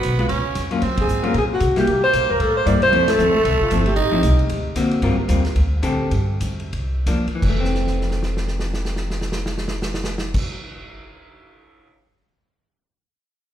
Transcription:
0.00 0.29 B1 medium
0.00 0.28 B3 medium
0.00 kick soft
0.00 hi-hat pedal soft
0.00 ride medium
0.19 0.28 G#3 medium
0.19 0.29 B3 medium
0.19 0.29 F4 medium
0.19 ride soft
0.28 0.55 C#2 medium
0.28 0.68 C#4 medium
0.28 kick soft
0.28 ride medium
0.55 0.81 F2 medium
0.55 kick soft
0.55 hi-hat pedal soft
0.55 ride medium
0.71 0.81 F#3 soft
0.71 0.81 A#3 medium
0.71 0.82 C#4 medium
0.71 0.82 F4 medium
0.71 ride soft
0.81 1.06 F#2 medium
0.81 1.56 C4 medium
0.81 kick soft
0.81 ride medium
0.97 1.29 G#4 medium
0.97 kick medium
0.97 ride medium
1.07 1.33 G#2 medium
1.07 hi-hat pedal medium
1.23 1.33 F#3 medium
1.23 1.33 A#3 medium
1.23 1.34 C#4 medium
1.23 1.34 F4 medium
1.23 ride soft
1.27 1.36 A#4 medium
1.34 1.60 A#2 medium
1.34 1.44 G#4 medium
1.34 kick soft
1.34 ride medium
1.53 1.76 F#4 medium
1.60 1.75 C3 medium
1.60 kick soft
1.60 hi-hat pedal medium
1.60 ride medium
1.76 1.86 G3 medium
1.76 1.86 A#3 medium
1.76 1.86 E4 medium
1.76 2.02 G4 medium
1.76 muted upright bass stroke soft
1.76 snare soft
1.76 ride soft
1.86 2.13 C3 medium
1.86 2.82 A#3 medium
1.86 kick soft
1.86 ride medium
2.04 2.32 C5 medium
2.13 2.22 A#2 medium
2.13 kick soft
2.13 hi-hat pedal medium
2.13 ride medium
2.22 2.30 G2 soft
2.30 2.39 E2 medium
2.30 2.42 A#4 medium
2.40 2.65 A2 medium
2.40 2.55 A4 loud
2.40 kick soft
2.40 ride medium
2.57 2.68 C5 medium
2.66 2.75 G2 medium
2.66 2.80 G3 medium
2.66 2.80 A#3 medium
2.66 2.80 E4 medium
2.66 2.82 D5 medium
2.66 kick soft
2.66 hi-hat pedal medium
2.66 ride medium
2.74 2.82 E2 medium
2.82 2.91 C2 medium
2.82 3.12 C5 loud
2.82 ride soft
2.86 2.93 A#3 medium
2.92 3.17 F2 medium
2.92 3.06 F3 medium
2.92 3.95 A3 medium
2.92 3.06 A3 medium
2.92 3.06 C4 medium
2.92 3.06 E4 medium
2.92 kick soft
2.92 ride medium
3.08 3.35 A4 medium
3.08 snare medium
3.08 ride medium
3.17 3.28 E2 medium
3.17 3.32 F3 soft
3.17 3.32 A3 medium
3.17 3.32 C4 medium
3.17 3.32 E4 medium
3.17 hi-hat pedal soft
3.27 3.34 C2 medium
3.35 3.43 A1 medium
3.35 3.59 A4 medium
3.45 3.59 C2 medium
3.45 kick soft
3.45 ride medium
3.60 3.73 F4 medium
3.60 kick soft
3.70 3.96 G1 medium
3.70 3.85 F3 medium
3.70 3.85 A3 medium
3.70 3.85 C4 medium
3.70 3.85 E4 medium
3.70 kick soft
3.70 hi-hat pedal medium
3.70 ride medium
3.86 3.96 G4 medium
3.86 ride soft
3.96 4.22 A1 medium
3.96 4.45 D#4 loud
3.96 4.47 G4 medium
3.96 kick soft
3.96 ride medium
4.12 4.22 F3 medium
4.12 4.22 A3 medium
4.12 4.22 C4 medium
4.12 4.22 E4 medium
4.23 4.37 C2 medium
4.23 kick soft
4.23 hi-hat pedal medium
4.23 ride medium
4.39 ride soft
4.49 4.74 D2 medium
4.49 kick soft
4.49 ride medium
4.76 5.01 F2 medium
4.76 5.02 D3 medium
4.76 5.02 A#3 medium
4.76 5.02 C4 medium
4.76 5.03 F#4 medium
4.76 kick soft
4.76 hi-hat pedal medium
4.76 ride medium
4.91 ride soft
5.02 5.16 G2 medium
5.02 5.16 G3 medium
5.02 5.16 C4 medium
5.02 5.16 F4 medium
5.02 5.17 A#4 medium
5.02 kick soft
5.02 ride medium
5.17 muted upright bass stroke soft
5.28 5.54 D#2 medium
5.28 5.42 G3 soft
5.28 5.43 C4 medium
5.28 5.43 F4 medium
5.28 5.43 A#4 medium
5.28 kick soft
5.28 hi-hat pedal medium
5.28 ride medium
5.45 snare soft
5.45 ride soft
5.55 5.82 D2 medium
5.55 kick soft
5.55 ride medium
5.83 6.10 A2 medium
5.83 6.11 D3 medium
5.83 6.11 C4 medium
5.83 6.11 G4 medium
5.83 6.11 A4 medium
5.83 kick soft
5.83 hi-hat pedal medium
5.83 ride medium
6.11 6.40 G2 medium
6.11 kick soft
6.11 ride medium
6.41 6.71 F2 medium
6.41 kick soft
6.41 hi-hat pedal medium
6.41 ride medium
6.60 ride soft
6.73 7.05 C2 medium
6.73 kick soft
6.73 ride medium
7.06 7.25 E2 medium
7.06 7.25 F3 medium
7.06 7.25 A#3 medium
7.06 7.25 D4 medium
7.06 kick soft
7.06 hi-hat pedal soft
7.06 ride medium
7.27 muted upright bass stroke soft
7.27 ride soft
7.35 10.37 E3 medium
7.42 10.36 F1 medium
7.42 kick loud
7.42 crash medium
7.49 10.44 A3 medium
7.60 10.49 C4 medium
7.64 snare soft
7.75 snare soft
7.87 snare soft
8.01 snare soft
8.11 snare soft
8.23 snare medium
8.37 snare medium
8.48 snare soft
8.60 snare medium
8.74 snare medium
8.85 snare medium
8.96 snare medium
9.10 snare medium
9.21 snare medium
9.32 snare medium
9.46 snare medium
9.58 snare medium
9.68 snare medium
9.82 snare medium
9.94 snare medium
10.04 snare medium
10.18 snare medium
10.34 kick loud
10.34 crash medium

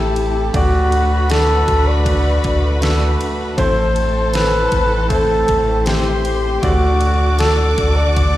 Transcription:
0.00 0.50 A1 medium
0.00 0.54 A3 medium
0.00 8.37 A3 medium
0.00 0.52 C4 medium
0.00 0.56 C4 medium
0.00 0.51 E4 medium
0.00 0.56 E4 medium
0.00 0.55 F#4 medium
0.00 0.55 G4 medium
0.00 0.56 G4 medium
0.00 0.50 A4 medium
0.00 0.51 A4 medium
0.00 0.50 A5 medium
0.16 ride soft
0.53 1.64 D2 loud
0.53 1.64 A2 medium
0.53 3.55 D3 medium
0.53 1.26 A3 medium
0.53 1.26 D4 medium
0.53 3.55 F#4 medium
0.53 1.27 F#4 medium
0.53 1.33 F#4 loud
0.53 3.53 B4 medium
0.53 1.27 D5 loud
0.53 3.53 B5 medium
0.53 kick loud
0.53 ride medium
0.92 ride medium
1.30 2.02 A3 medium
1.30 2.02 D4 medium
1.30 2.03 F#4 medium
1.30 1.89 A4 loud
1.30 2.03 D5 medium
1.30 snare loud
1.30 ride medium
1.68 2.40 D2 loud
1.68 kick medium
1.68 ride medium
1.88 3.20 D5 medium
2.05 2.78 A3 medium
2.05 2.78 D4 medium
2.05 2.79 F#4 medium
2.05 2.79 B4 medium
2.05 kick medium
2.05 ride medium
2.44 3.16 D2 medium
2.44 kick medium
2.44 ride soft
2.81 3.53 A3 medium
2.81 3.54 D4 medium
2.81 3.54 F#4 medium
2.81 3.54 A4 medium
2.81 snare loud
2.81 ride medium
3.21 ride medium
3.57 4.68 A1 loud
3.57 4.68 A2 medium
3.57 6.60 E3 medium
3.57 4.68 E3 medium
3.57 4.30 A3 medium
3.57 6.60 C4 medium
3.57 4.30 C4 medium
3.57 4.30 E4 medium
3.57 5.82 A4 medium
3.57 4.35 C5 loud
3.57 4.30 C5 loud
3.57 5.82 A5 medium
3.57 kick loud
3.57 ride medium
3.96 ride medium
4.33 5.06 A3 medium
4.33 5.06 C4 medium
4.33 5.07 E4 medium
4.33 5.07 A4 medium
4.33 5.09 B4 loud
4.33 snare loud
4.33 ride medium
4.72 5.44 A1 medium
4.72 kick medium
4.72 ride medium
5.09 5.82 A3 medium
5.09 5.83 C4 medium
5.09 5.83 E4 medium
5.09 5.88 A4 loud
5.09 5.83 C5 medium
5.09 kick medium
5.09 ride medium
5.48 6.59 A1 medium
5.48 kick medium
5.48 ride medium
5.86 6.59 A3 medium
5.86 6.59 C4 medium
5.86 6.59 E4 medium
5.86 6.64 G4 medium
5.86 6.61 C5 medium
5.86 6.60 C5 medium
5.86 6.61 C6 medium
5.86 snare loud
5.86 ride medium
6.25 ride medium
6.62 7.74 D2 loud
6.62 7.74 A2 medium
6.62 8.37 D3 medium
6.62 7.35 A3 loud
6.62 7.35 D4 medium
6.62 8.37 F#4 medium
6.62 7.38 F#4 loud
6.62 7.36 F#4 medium
6.62 8.37 D5 medium
6.62 7.36 D5 loud
6.62 8.37 D6 medium
6.62 kick loud
6.62 ride medium
7.01 ride medium
7.39 8.12 A3 medium
7.39 8.12 D4 medium
7.39 8.13 F#4 medium
7.39 7.98 A4 loud
7.39 8.13 A4 medium
7.39 snare loud
7.39 ride medium
7.78 8.37 D2 loud
7.78 kick medium
7.78 ride medium
7.97 8.37 D5 medium
8.16 8.37 A3 medium
8.16 8.37 D4 medium
8.16 8.37 F#4 medium
8.16 8.37 D5 medium
8.16 kick medium
8.16 ride medium

